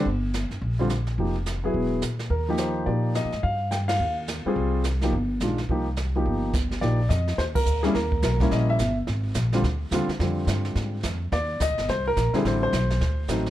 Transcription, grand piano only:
0.79 D3 G3 C4 F4
1.18 F3 A#3 D#4 G4
1.64 F#3 B3 E4 G#4
2.30 A#4
2.48 F3 A#3 D#4 G4
2.59 C5
2.86 F3 A#3 D#4 G4 D5
3.15 D#5
3.43 F5
3.71 G5
3.88 F5
4.46 G3 C4 F4 G#4
5.03 F3 A#3 D#4 G4
5.42 D#3 G#3 D4 F4
5.70 F3 A#3 D#4 G4
6.16 F3 A#3 D#4 G4
6.81 F3 A#3 D#4 G4 D5
7.09 D#5
7.38 C5
7.55 A#4
7.83 G3 A#3 C#4 E4 G#4
7.95 A#4
8.24 A#4
8.40 G3 A#3 C#4 E4
8.52 D#5
8.70 E5
9.53 D3 G3 C4 F4
9.92 D3 G3 C4 F4
10.20 D3 G3 C4 F4
11.33 D5
11.62 D#5
11.90 C5
12.07 A#4
12.34 D3 G3 C4 E4 G#4
12.47 C5
12.63 C5
13.29 F#3 A3 C4 D#4

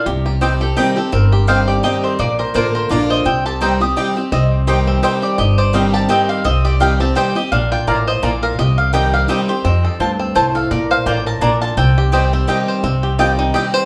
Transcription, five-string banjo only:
0.06 G4
0.26 G4
0.41 C5
0.61 G4
0.77 G4
0.97 C4
1.13 C4
1.32 G4
1.48 C5
1.68 G4
1.84 G4
2.04 C4
2.19 A#3
2.39 A#4
2.55 C5
2.75 A#4
2.91 F4
3.10 C5
3.26 C4
3.46 G4
3.62 C5
3.81 G4
3.97 G4
4.17 C4
4.32 C4
4.68 G4
4.87 C4
5.03 C5
5.22 G4
5.38 G4
5.58 C5
5.74 G4
5.94 G4
6.10 C4
6.29 G4
6.45 C4
6.65 G4
6.81 G4
7.00 C4
7.16 C5
7.36 G4
7.52 D4
7.72 F4
7.88 A#4
8.08 C5
8.23 F4
8.43 A#4
8.59 G4
8.94 G4
9.14 G4
9.29 C4
9.49 G4
9.65 C4
9.85 A4
10.00 F4
10.19 C4
10.36 C5
10.55 A4
10.71 A#4
10.91 C5
11.07 F4
11.26 A#4
11.42 D4
11.62 F4
11.78 C4
11.98 G4
12.13 C5
12.33 C4
12.49 G4
12.68 C5
12.84 C4
13.03 G4
13.19 F4
13.39 D#4
13.54 G4
13.74 C5

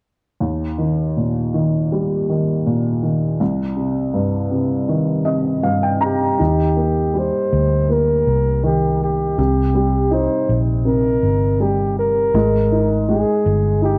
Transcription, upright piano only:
0.41 D#2
0.78 D#3
1.17 A#2
1.54 D#3
1.92 G3
2.29 D#3
2.66 A#2
3.03 D#3
3.40 C2
3.76 C3
4.14 G2
4.51 C3
4.88 D#3
5.25 C3 D#5
5.63 G2 F5
5.83 G5
6.00 C3 A#5
6.39 D#4
6.77 A#3
7.14 G3
7.89 A#3
8.63 D#3
9.38 C3
9.75 G3
10.11 D#4
10.85 C3
11.60 G3
12.35 G#3
12.72 D#4
13.09 G#3
13.82 D#4

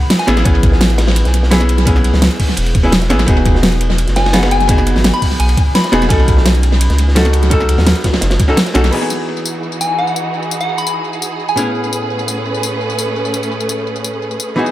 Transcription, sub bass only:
0.28 A1
0.46 A1
1.25 B1
2.14 C#2
2.57 E1
2.75 E1
3.10 A1
3.28 E1
4.08 F#1
4.96 G#1
5.40 B1
5.93 E1
6.10 B1
6.90 C#2
7.78 D#2
8.22 F#1
8.75 B1

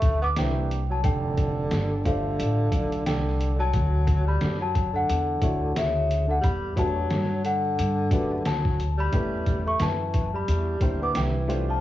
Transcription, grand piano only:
0.36 A#3 D4 E4 G4 C5
2.04 A3 D4 F4 G4 C5
5.42 A3 E4 F#4 C#5 D5
6.76 A3 D4 F#4 G4 B4
8.11 A3 D4 F#4 G4 B4
9.12 A3 C#4 E4 G4 B4
10.81 A#3 D4 E4 G4 C5
11.48 A3 D4 F4 G4 C5

